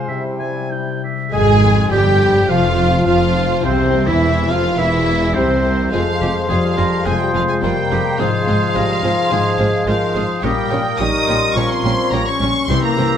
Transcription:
Already playing: C4 F4 G#4 C5
0.08 C3 G3 E4 E5 G5
0.39 G3 G#5
0.71 E4 G5
1.03 G4 E5
1.32 G#1 F2 G#2 G#3 G#4 G#5
1.63 C4
1.90 G1 G2 G3 F4 G4 G5
2.21 C5
2.48 F1 F2 C3 F3 F4 F5
2.79 C4
3.07 F1 F2 F3 F4 F5
3.36 C5
3.64 C2 E2 C3 C4 C5
3.94 A#3
4.07 E1 E2 E3 E4 E5
4.23 G4
4.49 F1 F2 F3 F4 A#4 F5
4.78 E1 E2 E3 E4 E5
5.07 A#3
5.34 C2 C3 C4 G4 C5
5.65 A#4
5.91 F1 F2 F3 G#3 C4 F4 G#4 C5 F5 C6
6.21 F1 F2 G#3 C4 F4 G4 G#4 C5
6.48 F1 F2 F3 G3 C4 F4 G#4 C5 F5
6.77 F1 F2 C4 F4 G#4 A#4 C5
7.05 F1 F2 C3 F3 G#3 C4 F4 G#4 C5 G#5
7.20 G3 G5
7.33 F1 F2 F3 G#3 C4 F4 G#4 C5 F5
7.48 G#3 G#5
7.61 F1 F2 G3 C4 F4 G#4 C5 G5 A#5
7.65 A#3
7.90 F1 F2 C4 F4 G4 G#4 C5
8.18 G#1 G#2 F3 G#3 C4 F4 G#4 C5 F5 C6
8.46 G#1 G#2 G#3 C4 F4 G#4 C5
8.75 G#1 G#2 G3 C4 F4 G#4 A#4 C5
9.02 G#1 G#2 F3 C4 F4 G#4 C5
9.29 G#1 G#2 G#3 C4 F4 G#4 C5
9.57 G#1 G#2 G#3 C4 F4 G#4 C5
9.86 G#1 G#2 F3 C4 F4 G#4 A#4 C5 F5 C6
10.14 G#1 G#2 C4 F4 G#4 C5
10.42 A#1 A#2 G3 A#3 C#4 G4 A#4 C#5 G5 D#6
10.70 A#1 A#2 G3 C#4 G4 A#4 C#5
10.97 A#1 A#2 G3 C#4 D#4 G4 A#4 C#5 C#6 D#6
11.27 A#1 A#2 G3 C#4 G4 C#5 C6
11.54 A#1 A#2 F3 G3 C#4 G4 C#5 A#5 C#6
11.70 C4 C6
11.83 A#1 A#2 G3 C#4 G4 C#5
12.12 A#1 A#2 G3 A#3 C#4 G4 C#5 A#5 C#6
12.27 C#4 C#6
12.39 A#1 A#2 G3 C#4 G4 C#5
12.68 C2 C3 E3 G3 C4 E4 G4 C5 C6 E6
12.83 A#3 A#5
12.97 C2 C3 G3 C4 E4 G4 C5

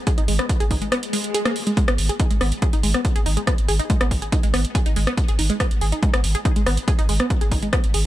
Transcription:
0.07 G#4, kick, closed hi-hat
0.18 G#1 D#4, closed hi-hat
0.28 G#1 G#3, open hi-hat
0.39 B3, cross-stick
0.49 kick, closed hi-hat
0.60 G#1 G#4, closed hi-hat
0.71 G#1 D#4, kick, open hi-hat
0.82 G#3, closed hi-hat
0.92 B3, cross-stick, closed hi-hat, swell
1.03 closed hi-hat
1.13 G#3, open hi-hat
1.24 closed hi-hat
1.34 G#4, closed hi-hat
1.45 A#3, cross-stick, closed hi-hat
1.56 open hi-hat
1.67 G#3, closed hi-hat
1.77 G#3, kick, closed hi-hat
1.88 G#1 B3, cross-stick, closed hi-hat
1.98 G#1, open hi-hat
2.09 G#4, closed hi-hat
2.20 D#4, kick, closed hi-hat
2.31 G#1 G#3, closed hi-hat
2.41 G#1 B3, cross-stick, open hi-hat
2.52 closed hi-hat
2.62 G#4, kick, closed hi-hat
2.73 G#1 D#4, closed hi-hat
2.83 G#1 G#3, open hi-hat
2.94 B3, cross-stick, closed hi-hat
3.05 kick, closed hi-hat
3.16 G#1 G#4, closed hi-hat
3.26 G#1 D#4, open hi-hat
3.37 G#3, closed hi-hat
3.47 B3, kick, cross-stick, closed hi-hat
3.58 G#1, closed hi-hat
3.69 G#1 G#4, open hi-hat
3.79 D#4, closed hi-hat
3.90 G#3, kick, closed hi-hat
4.01 G#1 B3, cross-stick, closed hi-hat
4.11 G#1, kick, open hi-hat
4.22 G#4, closed hi-hat
4.32 D#4, kick, closed hi-hat
4.43 G#1 G#3, closed hi-hat
4.54 G#1 B3, cross-stick, open hi-hat
4.65 closed hi-hat
4.75 G#4, kick, closed hi-hat
4.86 G#1 D#4, closed hi-hat
4.96 G#1 G#3, open hi-hat
5.07 B3, cross-stick, closed hi-hat
5.18 kick, closed hi-hat
5.28 G#1 G#4, closed hi-hat
5.39 G#1 D#4, open hi-hat
5.50 G#3, closed hi-hat
5.60 B3, kick, cross-stick, closed hi-hat
5.71 G#1, closed hi-hat
5.81 G#1 G#4, open hi-hat
5.92 D#4, closed hi-hat
6.03 G#3, kick, closed hi-hat
6.14 G#1 B3, cross-stick, closed hi-hat
6.24 G#1, open hi-hat
6.35 G#4, closed hi-hat
6.45 D#4, kick, closed hi-hat
6.56 G#1 G#3, closed hi-hat
6.66 G#1 B3, cross-stick, open hi-hat
6.77 closed hi-hat
6.88 G#4, kick, closed hi-hat
6.99 G#1 D#4, closed hi-hat
7.09 G#1 G#3, open hi-hat
7.20 B3, cross-stick, closed hi-hat
7.30 kick, closed hi-hat
7.41 G#1 G#4, closed hi-hat
7.52 G#1 D#4, kick, open hi-hat
7.62 G#3, closed hi-hat
7.73 B3, kick, cross-stick, closed hi-hat
7.84 G#1, closed hi-hat
7.94 G#1 G#4, open hi-hat

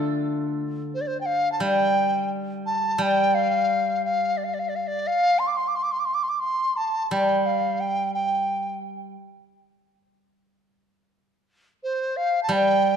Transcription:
Already playing: D3 A3 D4 F4 A4
0.94 C5
1.01 D5
1.07 C5
1.20 G5
1.25 F5
1.52 A5
1.60 G3 G5
2.66 A5
2.98 G3 G5
3.34 F5
4.04 F5
4.37 D5
4.44 F5
4.54 D5
4.59 F5
4.68 D5
4.75 F5
4.87 D5
5.07 F5
5.39 C6
5.47 D6
5.56 C6
5.67 D6
5.75 C6
5.83 D6
5.91 C6
5.99 D6
6.05 C6
6.14 D6
6.23 C6
6.28 D6
6.39 C6
6.76 A5
7.11 G3 G5
7.45 F5
7.80 G5
8.14 G5
11.83 C5
12.16 F5
12.43 A5
12.49 G3 G5

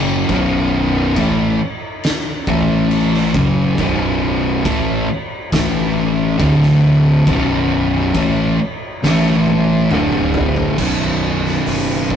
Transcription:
Already playing: F#1 F#2 C#3 F#3
0.29 B0 B1 F#2 B2, kick, crash
1.16 A1 A2 E3 A3, kick, crash
2.03 snare, crash
2.47 A1 A2 E3 A3, kick
2.91 crash
3.14 snare
3.34 F#1 F#2 C#3 F#3, kick
3.78 B0 B1 F#2 B2, kick, crash
4.65 A1 A2 E3 A3, kick, crash
5.52 A1 A2 E3 A3, kick, snare, crash
6.39 D1 D2 A2 D3, kick, crash
6.63 snare
7.27 B0 B1 F#2 B2, kick, crash
8.15 A1 A2 E3 A3, kick, crash
9.03 A1 A2 E3 A3, snare
9.46 high tom
9.91 D1 D2 A2 D3, mid tom
10.12 mid tom
10.34 floor tom
10.56 floor tom
10.78 B0 B1 F#2 B2, kick, crash
11.46 snare
11.67 F#1, open hi-hat
12.10 kick

